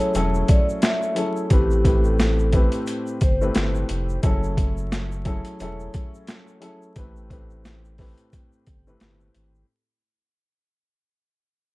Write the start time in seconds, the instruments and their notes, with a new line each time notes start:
Already playing: upright piano F#3 C#4 E4 G#4 A4, tonewheel organ F#3 A3 C#4 E4, vibraphone C#5
0.00 shaker
0.14 sub bass E1, upright piano F#3 C#4 E4 G#4 A4, closed hi-hat, shaker
0.34 shaker
0.48 vibraphone D5, kick, closed hi-hat, shaker
0.69 shaker
0.82 vibraphone E5, snare, closed hi-hat, shaker
1.02 shaker
1.15 upright piano F#3 C#4 E4 G#4 A4, closed hi-hat
1.37 shaker
1.50 sub bass A1, upright piano A2 A3 C4 G4 B4, tonewheel organ A3 C4 G4, vibraphone G4, kick, closed hi-hat, shaker
1.71 shaker
1.84 upright piano A2 A3 C4 G4 B4, kick, closed hi-hat
2.04 vibraphone A4, shaker
2.19 snare, closed hi-hat, shaker
2.39 shaker
2.52 upright piano A2 A3 C4 G4 B4, vibraphone B4, kick, closed hi-hat
2.72 closed hi-hat, shaker
2.87 closed hi-hat, shaker
3.07 shaker
3.21 sub bass G1, vibraphone C5, kick, closed hi-hat, shaker
3.41 upright piano A2 A3 C4 G4 B4, shaker
3.55 sub bass G1, snare, closed hi-hat, shaker
3.75 shaker
3.89 sub bass F1, closed hi-hat
4.09 shaker
4.23 sub bass F#1, upright piano F#3 C#4 E4 G#4 A4, tonewheel organ F#3 A3 C#4 E4, kick, closed hi-hat, shaker
4.44 shaker
4.57 kick, closed hi-hat
4.77 shaker
4.92 snare, closed hi-hat, shaker
5.12 shaker
5.25 upright piano F#3 C#4 E4 G#4 A4, kick, closed hi-hat
5.45 closed hi-hat, shaker
5.60 sub bass E1, upright piano F#3 C#4 E4 G#4 A4, closed hi-hat, shaker
5.80 shaker
5.94 kick, closed hi-hat, shaker
6.14 shaker
6.27 snare, closed hi-hat, shaker
6.48 shaker
6.60 upright piano F#3 C#4 E4 G#4 A4, closed hi-hat
6.82 shaker
6.96 sub bass A1, upright piano A2 A3 C4 G4 B4, tonewheel organ A3 C4 G4, kick, closed hi-hat, shaker
7.16 shaker
7.30 upright piano A2 A3 C4 G4 B4, kick, closed hi-hat
7.50 shaker
7.65 snare, closed hi-hat, shaker
7.85 shaker
7.98 upright piano A2 A3 C4 G4 B4, kick, snare, open hi-hat
8.18 closed hi-hat, shaker
8.33 kick, closed hi-hat, shaker
8.53 shaker
8.67 sub bass G1, kick, closed hi-hat, shaker
8.87 upright piano A2 A3 C4 G4 B4, shaker
9.00 sub bass G1, snare, closed hi-hat, shaker
9.21 shaker
9.34 sub bass G#1, closed hi-hat
9.55 shaker